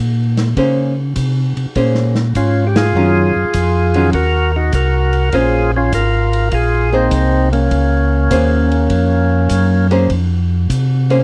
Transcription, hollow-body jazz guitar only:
0, 0, Header, 1, 2, 480
1, 0, Start_track
1, 0, Key_signature, -5, "minor"
1, 0, Tempo, 595829
1, 456, Time_signature, 4, 2, 24, 8
1, 9052, End_track
2, 0, Start_track
2, 0, Title_t, "Hollow-body jazz guitar"
2, 0, Program_c, 0, 26
2, 460, Note_on_c, 0, 58, 58
2, 466, Note_on_c, 0, 61, 59
2, 469, Note_on_c, 0, 68, 62
2, 470, Note_on_c, 0, 72, 66
2, 751, Note_off_c, 0, 58, 0
2, 754, Note_off_c, 0, 61, 0
2, 756, Note_off_c, 0, 68, 0
2, 756, Note_off_c, 0, 72, 0
2, 1419, Note_on_c, 0, 58, 52
2, 1421, Note_on_c, 0, 61, 58
2, 1423, Note_on_c, 0, 68, 64
2, 1430, Note_on_c, 0, 72, 55
2, 1711, Note_off_c, 0, 58, 0
2, 1712, Note_off_c, 0, 61, 0
2, 1713, Note_off_c, 0, 68, 0
2, 1716, Note_off_c, 0, 72, 0
2, 2378, Note_on_c, 0, 51, 57
2, 2384, Note_on_c, 0, 54, 57
2, 2387, Note_on_c, 0, 61, 63
2, 2390, Note_on_c, 0, 65, 58
2, 2670, Note_off_c, 0, 51, 0
2, 2674, Note_off_c, 0, 54, 0
2, 2675, Note_off_c, 0, 61, 0
2, 2676, Note_off_c, 0, 65, 0
2, 3184, Note_on_c, 0, 51, 53
2, 3184, Note_on_c, 0, 54, 58
2, 3186, Note_on_c, 0, 61, 60
2, 3194, Note_on_c, 0, 65, 53
2, 3321, Note_off_c, 0, 51, 0
2, 3321, Note_off_c, 0, 54, 0
2, 3322, Note_off_c, 0, 61, 0
2, 3326, Note_off_c, 0, 65, 0
2, 4295, Note_on_c, 0, 58, 55
2, 4300, Note_on_c, 0, 61, 57
2, 4300, Note_on_c, 0, 68, 64
2, 4302, Note_on_c, 0, 72, 62
2, 4589, Note_off_c, 0, 58, 0
2, 4591, Note_off_c, 0, 61, 0
2, 4592, Note_off_c, 0, 68, 0
2, 4592, Note_off_c, 0, 72, 0
2, 5579, Note_on_c, 0, 58, 65
2, 5585, Note_on_c, 0, 68, 61
2, 5588, Note_on_c, 0, 72, 66
2, 6183, Note_off_c, 0, 58, 0
2, 6187, Note_off_c, 0, 68, 0
2, 6188, Note_off_c, 0, 72, 0
2, 6694, Note_on_c, 0, 58, 62
2, 6696, Note_on_c, 0, 61, 61
2, 6696, Note_on_c, 0, 68, 65
2, 6702, Note_on_c, 0, 72, 69
2, 6989, Note_off_c, 0, 58, 0
2, 6990, Note_off_c, 0, 61, 0
2, 6990, Note_off_c, 0, 68, 0
2, 6993, Note_off_c, 0, 72, 0
2, 7983, Note_on_c, 0, 58, 71
2, 7983, Note_on_c, 0, 61, 71
2, 7988, Note_on_c, 0, 68, 73
2, 7993, Note_on_c, 0, 72, 69
2, 8121, Note_off_c, 0, 58, 0
2, 8121, Note_off_c, 0, 61, 0
2, 8124, Note_off_c, 0, 68, 0
2, 8126, Note_off_c, 0, 72, 0
2, 8945, Note_on_c, 0, 58, 63
2, 8946, Note_on_c, 0, 61, 61
2, 8952, Note_on_c, 0, 72, 67
2, 8953, Note_on_c, 0, 68, 61
2, 9052, Note_off_c, 0, 58, 0
2, 9052, Note_off_c, 0, 61, 0
2, 9052, Note_off_c, 0, 68, 0
2, 9052, Note_off_c, 0, 72, 0
2, 9052, End_track
0, 0, End_of_file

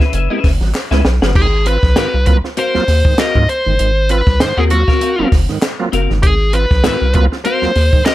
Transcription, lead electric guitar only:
0, 0, Header, 1, 2, 480
1, 0, Start_track
1, 0, Tempo, 610376
1, 1066, Time_signature, 4, 2, 24, 8
1, 6408, End_track
2, 0, Start_track
2, 0, Title_t, "Lead electric guitar"
2, 0, Program_c, 0, 29
2, 1070, Note_on_c, 0, 68, 90
2, 1311, Note_on_c, 0, 71, 96
2, 1315, Note_off_c, 0, 68, 0
2, 1775, Note_off_c, 0, 71, 0
2, 1784, Note_on_c, 0, 71, 95
2, 1849, Note_off_c, 0, 71, 0
2, 2035, Note_on_c, 0, 72, 108
2, 2509, Note_on_c, 0, 75, 115
2, 2524, Note_off_c, 0, 72, 0
2, 2731, Note_off_c, 0, 75, 0
2, 2745, Note_on_c, 0, 72, 112
2, 3230, Note_off_c, 0, 72, 0
2, 3233, Note_on_c, 0, 71, 92
2, 3464, Note_off_c, 0, 71, 0
2, 3467, Note_on_c, 0, 72, 105
2, 3599, Note_on_c, 0, 68, 94
2, 3604, Note_off_c, 0, 72, 0
2, 3638, Note_off_c, 0, 68, 0
2, 3703, Note_on_c, 0, 66, 78
2, 4152, Note_off_c, 0, 66, 0
2, 4897, Note_on_c, 0, 68, 96
2, 5138, Note_on_c, 0, 71, 90
2, 5148, Note_off_c, 0, 68, 0
2, 5612, Note_off_c, 0, 71, 0
2, 5621, Note_on_c, 0, 71, 86
2, 5686, Note_off_c, 0, 71, 0
2, 5855, Note_on_c, 0, 72, 96
2, 6308, Note_off_c, 0, 72, 0
2, 6338, Note_on_c, 0, 75, 117
2, 6408, Note_off_c, 0, 75, 0
2, 6408, End_track
0, 0, End_of_file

